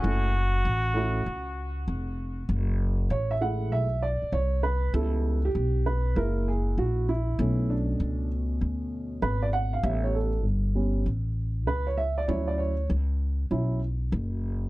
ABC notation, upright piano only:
X:1
M:4/4
L:1/16
Q:"Swing 16ths" 1/4=98
K:F#m
V:1 name="Upright piano"
[A,CEA]2 z4 [A,CEF]2 z8 | z4 c e f2 e2 d2 c2 B2 | A3 =G3 B2 ^A2 ^G2 F2 E2- | E2 D4 z6 B d f ^e |
e c A2 z8 B c e d | c d c2 z12 |]
V:2 name="Upright piano"
z16 | z6 [G,A,E]2 z8 | [=G,B,E]2 z6 [^G,^A,E]6 z2 | [B,,A,C]16 |
[=G,B,C]2 z4 [G,B,C]2 z8 | [F,CE]2 z6 [F,CE]2 z6 |]